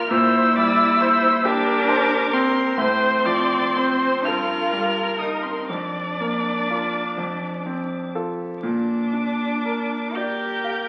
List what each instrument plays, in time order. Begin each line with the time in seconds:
Already playing: grand piano F4 A#4 D5, viola A#4, violin F6
0.09 grand piano A#2, cello E4, viola C5, violin E6
0.56 grand piano G3, viola D5
1.01 grand piano C5, viola C5
1.43 cello D4, grand piano G4, viola A#4, violin D6
1.89 grand piano C5
2.33 cello C4, grand piano C4, violin C6
2.77 grand piano A2, cello C4, viola C5, violin C6
3.25 grand piano F3, viola D5
3.76 grand piano C4 C5, viola C5
4.25 grand piano G2, cello F4, viola A#4, violin F6
4.73 grand piano G3
5.18 cello D#4, grand piano D#4 A#4, violin D#6
5.43 cello C4, violin C6
5.67 grand piano F2, cello D4, viola D5, violin D6
6.20 grand piano A#3
6.70 grand piano F4 A#4
7.17 grand piano F2
7.66 grand piano C4
8.15 grand piano F4 A4
8.59 cello D4, violin D6
8.63 grand piano A#2
9.13 grand piano D4
9.65 grand piano A#4
10.15 cello G4, viola A#4, grand piano D5, violin G6
10.64 grand piano F5